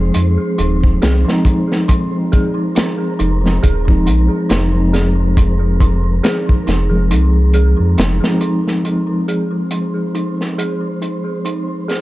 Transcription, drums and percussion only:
0, 0, Header, 1, 2, 480
1, 0, Start_track
1, 0, Key_signature, -4, "minor"
1, 0, Tempo, 869565
1, 1045, Time_signature, 4, 2, 24, 8
1, 6630, End_track
2, 0, Start_track
2, 0, Title_t, "Drums"
2, 78, Note_on_c, 9, 42, 79
2, 133, Note_off_c, 9, 42, 0
2, 324, Note_on_c, 9, 42, 64
2, 379, Note_off_c, 9, 42, 0
2, 461, Note_on_c, 9, 36, 87
2, 516, Note_off_c, 9, 36, 0
2, 564, Note_on_c, 9, 42, 79
2, 569, Note_on_c, 9, 38, 114
2, 619, Note_off_c, 9, 42, 0
2, 624, Note_off_c, 9, 38, 0
2, 709, Note_on_c, 9, 38, 51
2, 764, Note_off_c, 9, 38, 0
2, 800, Note_on_c, 9, 36, 91
2, 805, Note_on_c, 9, 42, 65
2, 855, Note_off_c, 9, 36, 0
2, 860, Note_off_c, 9, 42, 0
2, 948, Note_on_c, 9, 38, 42
2, 1003, Note_off_c, 9, 38, 0
2, 1043, Note_on_c, 9, 42, 86
2, 1044, Note_on_c, 9, 36, 101
2, 1098, Note_off_c, 9, 42, 0
2, 1099, Note_off_c, 9, 36, 0
2, 1285, Note_on_c, 9, 42, 55
2, 1287, Note_on_c, 9, 36, 89
2, 1340, Note_off_c, 9, 42, 0
2, 1342, Note_off_c, 9, 36, 0
2, 1524, Note_on_c, 9, 42, 85
2, 1532, Note_on_c, 9, 38, 114
2, 1579, Note_off_c, 9, 42, 0
2, 1587, Note_off_c, 9, 38, 0
2, 1764, Note_on_c, 9, 42, 66
2, 1819, Note_off_c, 9, 42, 0
2, 1908, Note_on_c, 9, 38, 33
2, 1963, Note_off_c, 9, 38, 0
2, 2006, Note_on_c, 9, 42, 76
2, 2008, Note_on_c, 9, 36, 103
2, 2062, Note_off_c, 9, 42, 0
2, 2063, Note_off_c, 9, 36, 0
2, 2143, Note_on_c, 9, 36, 97
2, 2198, Note_off_c, 9, 36, 0
2, 2246, Note_on_c, 9, 42, 70
2, 2301, Note_off_c, 9, 42, 0
2, 2484, Note_on_c, 9, 42, 87
2, 2490, Note_on_c, 9, 38, 117
2, 2539, Note_off_c, 9, 42, 0
2, 2545, Note_off_c, 9, 38, 0
2, 2726, Note_on_c, 9, 42, 60
2, 2731, Note_on_c, 9, 38, 48
2, 2782, Note_off_c, 9, 42, 0
2, 2786, Note_off_c, 9, 38, 0
2, 2965, Note_on_c, 9, 36, 97
2, 2965, Note_on_c, 9, 42, 77
2, 3020, Note_off_c, 9, 36, 0
2, 3020, Note_off_c, 9, 42, 0
2, 3204, Note_on_c, 9, 36, 93
2, 3209, Note_on_c, 9, 42, 62
2, 3260, Note_off_c, 9, 36, 0
2, 3265, Note_off_c, 9, 42, 0
2, 3444, Note_on_c, 9, 42, 76
2, 3449, Note_on_c, 9, 38, 106
2, 3499, Note_off_c, 9, 42, 0
2, 3504, Note_off_c, 9, 38, 0
2, 3584, Note_on_c, 9, 36, 83
2, 3639, Note_off_c, 9, 36, 0
2, 3684, Note_on_c, 9, 42, 63
2, 3691, Note_on_c, 9, 38, 54
2, 3739, Note_off_c, 9, 42, 0
2, 3747, Note_off_c, 9, 38, 0
2, 3924, Note_on_c, 9, 42, 73
2, 3979, Note_off_c, 9, 42, 0
2, 4160, Note_on_c, 9, 42, 68
2, 4215, Note_off_c, 9, 42, 0
2, 4406, Note_on_c, 9, 42, 81
2, 4413, Note_on_c, 9, 38, 104
2, 4461, Note_off_c, 9, 42, 0
2, 4469, Note_off_c, 9, 38, 0
2, 4548, Note_on_c, 9, 38, 62
2, 4603, Note_off_c, 9, 38, 0
2, 4640, Note_on_c, 9, 42, 59
2, 4695, Note_off_c, 9, 42, 0
2, 4789, Note_on_c, 9, 38, 36
2, 4844, Note_off_c, 9, 38, 0
2, 4885, Note_on_c, 9, 42, 64
2, 4940, Note_off_c, 9, 42, 0
2, 5125, Note_on_c, 9, 42, 61
2, 5180, Note_off_c, 9, 42, 0
2, 5359, Note_on_c, 9, 42, 76
2, 5414, Note_off_c, 9, 42, 0
2, 5603, Note_on_c, 9, 42, 49
2, 5659, Note_off_c, 9, 42, 0
2, 5745, Note_on_c, 9, 38, 30
2, 5800, Note_off_c, 9, 38, 0
2, 5844, Note_on_c, 9, 42, 75
2, 5899, Note_off_c, 9, 42, 0
2, 6084, Note_on_c, 9, 42, 55
2, 6139, Note_off_c, 9, 42, 0
2, 6323, Note_on_c, 9, 42, 67
2, 6378, Note_off_c, 9, 42, 0
2, 6565, Note_on_c, 9, 42, 49
2, 6572, Note_on_c, 9, 38, 44
2, 6620, Note_off_c, 9, 42, 0
2, 6627, Note_off_c, 9, 38, 0
2, 6630, End_track
0, 0, End_of_file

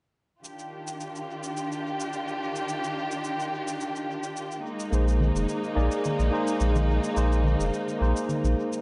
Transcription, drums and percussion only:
0, 0, Header, 1, 2, 480
1, 0, Start_track
1, 0, Tempo, 560748
1, 374, Time_signature, 4, 2, 24, 8
1, 7546, End_track
2, 0, Start_track
2, 0, Title_t, "Drums"
2, 380, Note_on_c, 9, 82, 50
2, 465, Note_off_c, 9, 82, 0
2, 505, Note_on_c, 9, 82, 29
2, 590, Note_off_c, 9, 82, 0
2, 748, Note_on_c, 9, 82, 61
2, 833, Note_off_c, 9, 82, 0
2, 859, Note_on_c, 9, 82, 47
2, 945, Note_off_c, 9, 82, 0
2, 989, Note_on_c, 9, 82, 27
2, 1074, Note_off_c, 9, 82, 0
2, 1226, Note_on_c, 9, 82, 58
2, 1312, Note_off_c, 9, 82, 0
2, 1342, Note_on_c, 9, 82, 44
2, 1427, Note_off_c, 9, 82, 0
2, 1472, Note_on_c, 9, 82, 30
2, 1557, Note_off_c, 9, 82, 0
2, 1713, Note_on_c, 9, 82, 56
2, 1798, Note_off_c, 9, 82, 0
2, 1823, Note_on_c, 9, 82, 48
2, 1908, Note_off_c, 9, 82, 0
2, 1951, Note_on_c, 9, 82, 30
2, 2037, Note_off_c, 9, 82, 0
2, 2188, Note_on_c, 9, 82, 59
2, 2274, Note_off_c, 9, 82, 0
2, 2299, Note_on_c, 9, 82, 52
2, 2385, Note_off_c, 9, 82, 0
2, 2429, Note_on_c, 9, 82, 31
2, 2515, Note_off_c, 9, 82, 0
2, 2664, Note_on_c, 9, 82, 62
2, 2749, Note_off_c, 9, 82, 0
2, 2775, Note_on_c, 9, 82, 48
2, 2860, Note_off_c, 9, 82, 0
2, 2907, Note_on_c, 9, 82, 29
2, 2993, Note_off_c, 9, 82, 0
2, 3146, Note_on_c, 9, 82, 63
2, 3232, Note_off_c, 9, 82, 0
2, 3257, Note_on_c, 9, 82, 47
2, 3342, Note_off_c, 9, 82, 0
2, 3387, Note_on_c, 9, 82, 31
2, 3473, Note_off_c, 9, 82, 0
2, 3623, Note_on_c, 9, 82, 57
2, 3709, Note_off_c, 9, 82, 0
2, 3737, Note_on_c, 9, 82, 49
2, 3822, Note_off_c, 9, 82, 0
2, 3864, Note_on_c, 9, 82, 32
2, 3949, Note_off_c, 9, 82, 0
2, 4106, Note_on_c, 9, 82, 59
2, 4191, Note_off_c, 9, 82, 0
2, 4219, Note_on_c, 9, 82, 50
2, 4305, Note_off_c, 9, 82, 0
2, 4349, Note_on_c, 9, 82, 32
2, 4434, Note_off_c, 9, 82, 0
2, 4453, Note_on_c, 9, 63, 88
2, 4539, Note_off_c, 9, 63, 0
2, 4587, Note_on_c, 9, 82, 64
2, 4672, Note_off_c, 9, 82, 0
2, 4697, Note_on_c, 9, 82, 51
2, 4782, Note_off_c, 9, 82, 0
2, 4826, Note_on_c, 9, 82, 33
2, 4911, Note_off_c, 9, 82, 0
2, 5062, Note_on_c, 9, 82, 65
2, 5148, Note_off_c, 9, 82, 0
2, 5174, Note_on_c, 9, 82, 47
2, 5183, Note_on_c, 9, 63, 63
2, 5260, Note_off_c, 9, 82, 0
2, 5268, Note_off_c, 9, 63, 0
2, 5302, Note_on_c, 9, 82, 30
2, 5388, Note_off_c, 9, 82, 0
2, 5541, Note_on_c, 9, 82, 61
2, 5626, Note_off_c, 9, 82, 0
2, 5653, Note_on_c, 9, 82, 53
2, 5738, Note_off_c, 9, 82, 0
2, 5782, Note_on_c, 9, 82, 32
2, 5783, Note_on_c, 9, 63, 86
2, 5868, Note_off_c, 9, 82, 0
2, 5869, Note_off_c, 9, 63, 0
2, 6024, Note_on_c, 9, 82, 64
2, 6110, Note_off_c, 9, 82, 0
2, 6135, Note_on_c, 9, 82, 55
2, 6221, Note_off_c, 9, 82, 0
2, 6268, Note_on_c, 9, 82, 32
2, 6354, Note_off_c, 9, 82, 0
2, 6368, Note_on_c, 9, 63, 85
2, 6454, Note_off_c, 9, 63, 0
2, 6508, Note_on_c, 9, 82, 64
2, 6594, Note_off_c, 9, 82, 0
2, 6623, Note_on_c, 9, 82, 49
2, 6708, Note_off_c, 9, 82, 0
2, 6749, Note_on_c, 9, 82, 31
2, 6835, Note_off_c, 9, 82, 0
2, 6989, Note_on_c, 9, 82, 65
2, 7074, Note_off_c, 9, 82, 0
2, 7095, Note_on_c, 9, 63, 59
2, 7099, Note_on_c, 9, 82, 47
2, 7181, Note_off_c, 9, 63, 0
2, 7185, Note_off_c, 9, 82, 0
2, 7229, Note_on_c, 9, 82, 32
2, 7315, Note_off_c, 9, 82, 0
2, 7470, Note_on_c, 9, 82, 59
2, 7546, Note_off_c, 9, 82, 0
2, 7546, End_track
0, 0, End_of_file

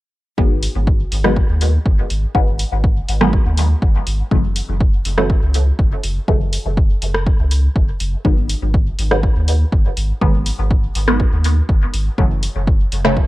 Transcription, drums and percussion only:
0, 0, Header, 1, 2, 480
1, 0, Start_track
1, 0, Tempo, 491803
1, 371, Time_signature, 4, 2, 24, 8
1, 12953, End_track
2, 0, Start_track
2, 0, Title_t, "Drums"
2, 371, Note_on_c, 9, 36, 112
2, 469, Note_off_c, 9, 36, 0
2, 611, Note_on_c, 9, 46, 80
2, 709, Note_off_c, 9, 46, 0
2, 851, Note_on_c, 9, 36, 121
2, 949, Note_off_c, 9, 36, 0
2, 1091, Note_on_c, 9, 46, 79
2, 1189, Note_off_c, 9, 46, 0
2, 1213, Note_on_c, 9, 37, 82
2, 1311, Note_off_c, 9, 37, 0
2, 1331, Note_on_c, 9, 36, 109
2, 1428, Note_off_c, 9, 36, 0
2, 1571, Note_on_c, 9, 46, 79
2, 1668, Note_off_c, 9, 46, 0
2, 1811, Note_on_c, 9, 36, 117
2, 1908, Note_off_c, 9, 36, 0
2, 2050, Note_on_c, 9, 46, 79
2, 2148, Note_off_c, 9, 46, 0
2, 2291, Note_on_c, 9, 36, 117
2, 2388, Note_off_c, 9, 36, 0
2, 2531, Note_on_c, 9, 46, 81
2, 2628, Note_off_c, 9, 46, 0
2, 2771, Note_on_c, 9, 36, 122
2, 2868, Note_off_c, 9, 36, 0
2, 3011, Note_on_c, 9, 46, 85
2, 3108, Note_off_c, 9, 46, 0
2, 3133, Note_on_c, 9, 37, 82
2, 3230, Note_off_c, 9, 37, 0
2, 3250, Note_on_c, 9, 36, 124
2, 3348, Note_off_c, 9, 36, 0
2, 3489, Note_on_c, 9, 46, 86
2, 3587, Note_off_c, 9, 46, 0
2, 3730, Note_on_c, 9, 36, 119
2, 3828, Note_off_c, 9, 36, 0
2, 3970, Note_on_c, 9, 46, 85
2, 4067, Note_off_c, 9, 46, 0
2, 4210, Note_on_c, 9, 36, 115
2, 4308, Note_off_c, 9, 36, 0
2, 4449, Note_on_c, 9, 46, 82
2, 4547, Note_off_c, 9, 46, 0
2, 4690, Note_on_c, 9, 36, 127
2, 4788, Note_off_c, 9, 36, 0
2, 4930, Note_on_c, 9, 46, 89
2, 5027, Note_off_c, 9, 46, 0
2, 5052, Note_on_c, 9, 37, 76
2, 5150, Note_off_c, 9, 37, 0
2, 5170, Note_on_c, 9, 36, 119
2, 5267, Note_off_c, 9, 36, 0
2, 5409, Note_on_c, 9, 46, 82
2, 5507, Note_off_c, 9, 46, 0
2, 5650, Note_on_c, 9, 36, 119
2, 5747, Note_off_c, 9, 36, 0
2, 5890, Note_on_c, 9, 46, 83
2, 5987, Note_off_c, 9, 46, 0
2, 6130, Note_on_c, 9, 36, 117
2, 6227, Note_off_c, 9, 36, 0
2, 6370, Note_on_c, 9, 46, 82
2, 6468, Note_off_c, 9, 46, 0
2, 6610, Note_on_c, 9, 36, 127
2, 6707, Note_off_c, 9, 36, 0
2, 6850, Note_on_c, 9, 46, 82
2, 6948, Note_off_c, 9, 46, 0
2, 6972, Note_on_c, 9, 37, 74
2, 7070, Note_off_c, 9, 37, 0
2, 7090, Note_on_c, 9, 36, 122
2, 7188, Note_off_c, 9, 36, 0
2, 7330, Note_on_c, 9, 46, 82
2, 7427, Note_off_c, 9, 46, 0
2, 7570, Note_on_c, 9, 36, 119
2, 7668, Note_off_c, 9, 36, 0
2, 7810, Note_on_c, 9, 46, 82
2, 7908, Note_off_c, 9, 46, 0
2, 8050, Note_on_c, 9, 36, 113
2, 8148, Note_off_c, 9, 36, 0
2, 8290, Note_on_c, 9, 46, 81
2, 8388, Note_off_c, 9, 46, 0
2, 8530, Note_on_c, 9, 36, 121
2, 8628, Note_off_c, 9, 36, 0
2, 8770, Note_on_c, 9, 46, 78
2, 8867, Note_off_c, 9, 46, 0
2, 8893, Note_on_c, 9, 37, 77
2, 8990, Note_off_c, 9, 37, 0
2, 9010, Note_on_c, 9, 36, 114
2, 9108, Note_off_c, 9, 36, 0
2, 9251, Note_on_c, 9, 46, 80
2, 9348, Note_off_c, 9, 46, 0
2, 9490, Note_on_c, 9, 36, 116
2, 9587, Note_off_c, 9, 36, 0
2, 9730, Note_on_c, 9, 46, 81
2, 9827, Note_off_c, 9, 46, 0
2, 9970, Note_on_c, 9, 36, 112
2, 10067, Note_off_c, 9, 36, 0
2, 10209, Note_on_c, 9, 46, 78
2, 10307, Note_off_c, 9, 46, 0
2, 10450, Note_on_c, 9, 36, 115
2, 10547, Note_off_c, 9, 36, 0
2, 10690, Note_on_c, 9, 46, 82
2, 10787, Note_off_c, 9, 46, 0
2, 10812, Note_on_c, 9, 37, 78
2, 10910, Note_off_c, 9, 37, 0
2, 10930, Note_on_c, 9, 36, 109
2, 11027, Note_off_c, 9, 36, 0
2, 11170, Note_on_c, 9, 46, 75
2, 11267, Note_off_c, 9, 46, 0
2, 11410, Note_on_c, 9, 36, 106
2, 11507, Note_off_c, 9, 36, 0
2, 11650, Note_on_c, 9, 46, 79
2, 11748, Note_off_c, 9, 46, 0
2, 11890, Note_on_c, 9, 36, 108
2, 11988, Note_off_c, 9, 36, 0
2, 12131, Note_on_c, 9, 46, 77
2, 12228, Note_off_c, 9, 46, 0
2, 12370, Note_on_c, 9, 36, 118
2, 12468, Note_off_c, 9, 36, 0
2, 12610, Note_on_c, 9, 46, 79
2, 12708, Note_off_c, 9, 46, 0
2, 12733, Note_on_c, 9, 37, 81
2, 12831, Note_off_c, 9, 37, 0
2, 12851, Note_on_c, 9, 36, 106
2, 12948, Note_off_c, 9, 36, 0
2, 12953, End_track
0, 0, End_of_file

